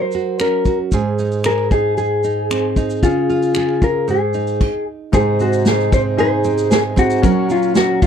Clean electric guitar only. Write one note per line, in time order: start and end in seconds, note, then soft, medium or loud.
0.02 0.41 C5 medium
0.41 0.77 A#4 medium
1.46 1.71 A#4 medium
1.72 1.96 G#4 medium
1.98 3.06 G#4 medium
3.03 3.85 F4 medium
3.84 4.07 A#4 medium
4.10 4.84 G#4 medium
5.15 5.41 G#4 loud
5.41 5.68 F#4 medium
5.68 5.91 G#4 medium
5.94 6.01 C5 loud
6.20 6.73 C5 medium
6.73 6.80 G#4 loud
6.99 7.47 F#4 loud
7.52 7.75 F4 medium
7.77 8.03 F#4 medium
8.03 8.07 F4 medium